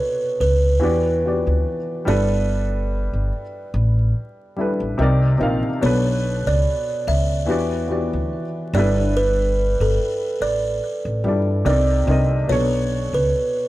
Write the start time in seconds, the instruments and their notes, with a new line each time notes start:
Already playing: upright piano B2 B3 D4 A4 C#5, kalimba B4
0.40 upright bass C#2, kalimba B4
0.80 upright bass E2, upright piano E3 B3 F#4 G4
0.84 upright piano D5
1.24 upright piano E3 B3 F#4 G4
1.28 upright piano D5
1.47 upright bass D2
2.05 upright bass G1, upright piano G3 D4 E4 A4, kalimba D5
2.10 upright piano B4
3.13 upright bass G1
3.74 upright bass A1
4.56 upright piano G3 D4 E4 A4
4.61 upright piano B4
4.80 upright bass A1
4.98 upright bass C2, upright piano C3 C4 D#4 A#4
5.02 upright piano D5
5.38 upright bass A#1, upright piano C3 C4 D#4 A#4
5.43 upright piano F5
5.81 upright bass B1, upright piano B2 B3 D4 A4, kalimba C#5
5.86 upright piano B4
6.47 upright bass C#2, kalimba D5
7.07 upright bass C#2, kalimba E5
7.46 upright bass E2, upright piano E3 B3 F#4 G4
7.51 upright piano D5
7.88 upright piano E3 B3 F#4 G4
7.92 upright piano D5
8.13 upright bass D2
8.73 upright bass G1, upright piano G3 D4 E4, kalimba D5
8.78 upright piano A4 B4
9.17 kalimba B4
9.80 upright bass G1, kalimba A4
10.40 upright bass A1, kalimba D5
11.05 upright bass A1
11.24 upright bass G2, upright piano G3 D4 E4 A4
11.28 upright piano D5
11.65 upright bass C2, upright piano C3 C4 D#4 A#4, kalimba D5
11.69 upright piano D5
12.07 upright bass C2, upright piano C3 C4 D#4 A#4
12.11 upright piano D#5
12.47 upright bass B1, upright piano B2 B3 D4 A4, kalimba C#5
12.52 upright piano C#5
13.13 upright bass C#2, kalimba B4